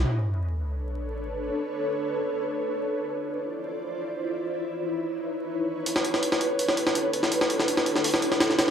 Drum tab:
HH |----------------|----------------|----------------|----------------|
SD |----------------|----------------|----------------|----------------|

HH |o-o-o-o-o-o-o-o-|o-o-o-o-o-o-o-o-|
SD |-o-o-o---o-o---o|-o-o-o-o-o-oooo-|